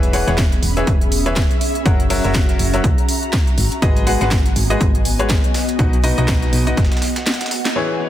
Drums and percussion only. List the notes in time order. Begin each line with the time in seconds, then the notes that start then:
0.03 closed hi-hat
0.13 closed hi-hat, open hi-hat
0.28 snare, closed hi-hat
0.38 kick, snare, closed hi-hat
0.52 closed hi-hat
0.63 closed hi-hat, open hi-hat
0.77 closed hi-hat
0.87 kick, closed hi-hat
1.01 closed hi-hat
1.12 closed hi-hat, open hi-hat
1.26 closed hi-hat
1.36 kick, snare, closed hi-hat
1.51 closed hi-hat
1.61 closed hi-hat, open hi-hat
1.75 closed hi-hat
1.86 kick, closed hi-hat
2.00 closed hi-hat
2.10 open hi-hat
2.24 closed hi-hat
2.35 kick, snare, closed hi-hat
2.49 snare, closed hi-hat
2.59 closed hi-hat, open hi-hat
2.74 closed hi-hat
2.84 kick, closed hi-hat
2.98 closed hi-hat
3.09 closed hi-hat, open hi-hat
3.23 closed hi-hat
3.33 kick, snare, closed hi-hat
3.47 closed hi-hat
3.58 closed hi-hat, open hi-hat
3.72 closed hi-hat
3.82 kick, closed hi-hat
3.96 closed hi-hat
4.07 closed hi-hat, open hi-hat
4.21 snare, closed hi-hat
4.31 kick, snare, closed hi-hat
4.46 closed hi-hat
4.56 closed hi-hat, open hi-hat
4.70 closed hi-hat
4.81 kick, closed hi-hat
4.95 closed hi-hat
5.05 closed hi-hat, open hi-hat
5.19 closed hi-hat
5.30 kick, snare, closed hi-hat
5.44 closed hi-hat
5.54 snare, closed hi-hat, open hi-hat
5.69 closed hi-hat
5.79 kick, closed hi-hat
5.93 closed hi-hat
6.04 closed hi-hat, open hi-hat
6.18 closed hi-hat
6.28 kick, snare, closed hi-hat
6.42 snare, closed hi-hat
6.53 closed hi-hat, open hi-hat
6.67 closed hi-hat
6.77 kick, snare, closed hi-hat
6.84 snare, closed hi-hat
6.92 snare, closed hi-hat
6.97 snare, closed hi-hat
7.02 snare, closed hi-hat, open hi-hat
7.16 snare, closed hi-hat
7.26 snare, closed hi-hat
7.34 snare, closed hi-hat
7.41 snare, closed hi-hat
7.46 snare, closed hi-hat
7.51 snare, closed hi-hat, open hi-hat
7.65 snare, closed hi-hat
8.00 open hi-hat, shaker